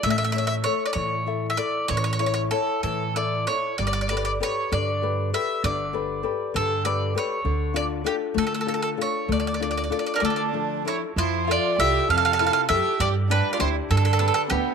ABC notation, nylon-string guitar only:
X:1
M:6/8
L:1/8
Q:3/8=65
K:Dm
V:1 name="Nylon-string guitar"
A, [EA^c] [EAc] E, [EAe] [EA] | E, [EA^c] [EAc] E, [EAe] [EAc] | G, [GA=B] [GAB] D, [GAB] [GAB] | D, [GA=B] [GAB] D, [GAB] [GAB] |
D, [DFA] [DFA] A, [DFA] [DFA] | A, [DFA] [DFA] A, [F,DA] [DA] | [K:F] F, [FAe] [EFA] C, [EFA] [EFA] | G, [DGd] [DG] D, [DG=B] [DGB] |]